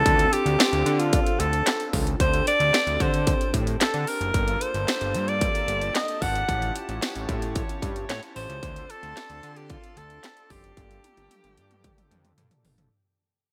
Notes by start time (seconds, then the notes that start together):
Already playing: A4
0.05 D2 C4 D4 E4 A4, kick, closed hi-hat
0.12 F4
0.19 closed hi-hat
0.33 G4, closed hi-hat
0.46 D2, closed hi-hat
0.60 snare, clap, closed hi-hat
0.73 D2, closed hi-hat
0.86 D3, closed hi-hat
1.00 F4, closed hi-hat
1.13 kick, closed hi-hat
1.26 closed hi-hat
1.40 D2 A4, closed hi-hat
1.53 closed hi-hat
1.67 snare, clap, closed hi-hat
1.80 closed hi-hat
1.93 C#2, kick, open hi-hat
2.07 closed hi-hat
2.19 D2 C4 D4 G4 A4 C5, kick, closed hi-hat
2.34 closed hi-hat
2.47 D5, closed hi-hat
2.60 D2, closed hi-hat
2.74 snare, clap, closed hi-hat
2.87 D2, closed hi-hat
3.00 D3 C5, kick, closed hi-hat
3.14 closed hi-hat
3.27 kick, closed hi-hat
3.41 closed hi-hat
3.54 A2, kick, closed hi-hat
3.67 closed hi-hat
3.81 A4, snare, clap, closed hi-hat
3.94 D3, closed hi-hat
4.07 A#4, open hi-hat
4.21 F#1, closed hi-hat
4.33 G1 A#3 D4 F4 G4 A4 A5, kick, closed hi-hat
4.48 closed hi-hat
4.61 C5, closed hi-hat
4.74 G1, closed hi-hat
4.88 snare, clap, closed hi-hat
5.01 G1, closed hi-hat
5.14 G2, closed hi-hat
5.28 D5, closed hi-hat
5.41 kick, closed hi-hat
5.55 closed hi-hat
5.68 G1, closed hi-hat
5.81 closed hi-hat
5.95 D#5, snare, clap, closed hi-hat
6.08 closed hi-hat
6.22 G#1 F#5, kick, open hi-hat
6.35 closed hi-hat
6.47 A1 C#4 E4 F4 G4 C#5, kick, closed hi-hat
6.62 closed hi-hat
6.76 closed hi-hat
6.89 A1, closed hi-hat
7.02 snare, clap, closed hi-hat
7.15 A1, closed hi-hat
7.29 A2, kick, closed hi-hat
7.42 closed hi-hat
7.55 kick, closed hi-hat
7.69 closed hi-hat
7.82 G2, kick, closed hi-hat
7.96 closed hi-hat
8.09 A2 C#5, snare, clap, closed hi-hat
8.23 closed hi-hat
8.36 A1 C5, open hi-hat
8.49 C#2, closed hi-hat
8.62 D2 C4 D4 F4 A4 D5 C6, kick, closed hi-hat
8.76 closed hi-hat
8.90 A4, closed hi-hat
9.03 D2, closed hi-hat
9.17 snare, clap, closed hi-hat
9.30 D2, closed hi-hat
9.43 D3, closed hi-hat
9.56 G4, closed hi-hat
9.70 F4, kick, closed hi-hat
9.84 closed hi-hat
9.97 D2 A4, closed hi-hat
10.10 closed hi-hat
10.24 snare, clap, closed hi-hat
10.37 closed hi-hat
10.50 F#1 G4, kick, open hi-hat
10.64 closed hi-hat
10.77 G1 A#3 D4 F4 G4 A4 G5, kick, closed hi-hat, high tom
10.91 closed hi-hat
11.04 closed hi-hat, high tom
11.17 G1, closed hi-hat, high tom
11.31 closed hi-hat, mid tom
11.44 G1, closed hi-hat, mid tom
11.57 G2, closed hi-hat
11.71 closed hi-hat, mid tom
11.84 kick, closed hi-hat, mid tom
11.98 closed hi-hat, mid tom
12.11 F2, closed hi-hat, mid tom
12.25 closed hi-hat, mid tom
12.38 G2, closed hi-hat, floor tom
12.51 closed hi-hat, floor tom
12.65 G1, floor tom, open hi-hat
12.78 F#1, closed hi-hat, floor tom